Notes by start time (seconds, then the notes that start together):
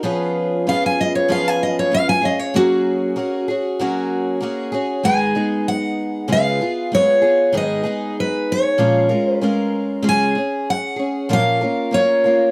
0.03 F3 B3 C#4 F4 G#4
0.67 B3 C#4 F4 G#4 F5
0.86 G#5
1.01 D#5
1.15 C#5
1.28 F3 B3 C#4 F4 G#4 F5
1.48 G#5
1.63 D#5
1.79 C#5
1.91 B3 C#4 F4 G#4 F5
2.09 G#5
2.21 C#4 F4 G#4
2.25 D#5
2.39 C#5
2.54 F#3 A#3 C#4 F#4 G#4
3.16 A#3 C#4 F#4 G#4
3.48 C#4 F#4 G#4
3.79 F#3 A#3 C#4 F#4 G#4
4.41 A#3 C#4 F#4 G#4
4.72 C#4 F#4 G#4
5.03 G#2 D#3 G#3 B3 D#4 G#4 G#5
5.35 G#3 B3 D#4 G#4
5.68 F#5
6.28 C#3 G#3 B3 F4 G#4
6.32 F5
6.61 B3 F4 G#4
6.92 G#3 B3 F4 G#4 C#5
7.22 B3 F4 G#4
7.53 G#2 D#3 G#3 B3 D#4 G#4
7.57 D#5
7.83 G#3 B3 D#4 G#4
8.20 B4
8.52 C#5
8.78 A#2 F3 G#3 C#4 F4 A#4
9.09 G#3 C#4 F4 A#4
9.34 B4
9.41 G#3 C#4 F4 A#4
10.02 C#3 G#3 C#4 F4 G#4
10.09 G#5
10.35 C#4 G#4
10.70 F#5
10.96 C#4 G#4
11.29 A#2 F3 A#3 C#4 F4 A#4
11.33 F5
11.61 A#3 C#4 F4 A#4
11.91 A#3 C#4 F4 A#4 C#5
12.24 A#3 C#4 F4 A#4